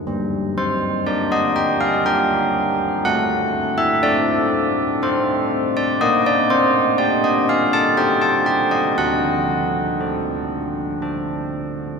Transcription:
\new Staff \with { instrumentName = "Church bells" } { \time 3/4 \key g \minor \tempo 4 = 60 << { r8 c''8 d''16 ees''16 g''16 f''16 g''4 | fis''8. e''16 d''4 c''8. d''16 | ees''16 d''16 c''8 d''16 ees''16 f''16 a''16 g''16 a''16 g''16 ees''16 | fis''2 r4 | } \\ { g4 <d' bes'>4 <d' bes'>4 | a4 <c' a'>4 <c' a'>4 | bes4 <d' g'>4 <c' ees' a'>4 | d4 <d' a'>4 <d' a'>4 | } >> }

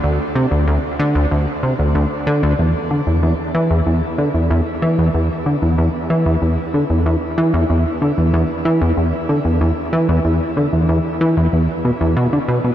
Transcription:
\new Staff \with { instrumentName = "Analog synth bass" } { \clef bass \time 4/4 \key c \lydian \tempo 4 = 94 d,16 r16 c16 d,16 d,16 r16 d16 d,16 d,16 r16 c16 d,16 d,16 r16 d16 d,16 | e,16 r16 d16 e,16 e,16 r16 e16 e,16 e,16 r16 d16 e,16 e,16 r16 e16 e,16 | e,16 r16 d16 e,16 e,16 r16 e16 e,16 e,16 r16 d16 e,16 e,16 r16 e16 e,16 | e,16 r16 d16 e,16 e,16 r16 e16 e,16 e,16 r16 d16 e,16 e,16 r16 e16 e,16 |
e,16 r16 d16 e,16 e,16 r16 e16 e,16 e,16 r16 b,16 e,16 b,16 d16 b,16 b,16 | }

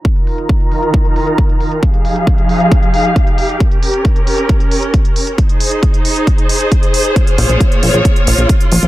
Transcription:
<<
  \new Staff \with { instrumentName = "String section" } { \time 4/4 \key ees \mixolydian \tempo 4 = 135 << { <ees ees' f' bes''>1 | <f ees' g' f''>1 | <des' bes'>1 | <ees' c''>1 |
<bes f' des''>1 | } \\ { bes'1 | aes'1 | r1 | aes'1~ |
aes'1 | } >> }
  \new Staff \with { instrumentName = "Analog synth bass" } { \clef bass \time 4/4 \key ees \mixolydian r1 | r1 | r1 | r1 |
r8 bes,,16 bes,,16 r8 bes,,16 bes,,16 r8 bes,,16 bes,,16 r8 bes,,16 bes,,16 | }
  \new DrumStaff \with { instrumentName = "Drums" } \drummode { \time 4/4 bd16 hh16 hho16 hh16 <hh bd>16 hh16 hho16 hh16 <hh bd>16 hh16 hho16 hh16 <hh bd>16 hh16 hho16 hh16 | <hh bd>16 hh16 hho16 hh16 <hh bd>16 hh16 hho16 hh16 <hh bd>16 hh16 hho16 hh16 <hh bd>16 hh16 hho16 hh16 | <hh bd>16 hh16 hho16 hh16 <hh bd>16 hh16 hho16 hh16 <hh bd>16 hh16 hho16 hh16 <hh bd>16 hh16 hho16 hh16 | <hh bd>16 hh16 hho16 hh16 <hh bd>16 hh16 hho16 hh16 <hh bd>16 hh16 hho16 hh16 <hh bd>16 hh16 hho16 hh16 |
<hh bd>16 hh16 hho16 hh16 <hh bd>16 hh16 hho16 hh16 <hh bd>16 hh16 hho16 hh16 <hh bd>16 hh16 hho16 hh16 | }
>>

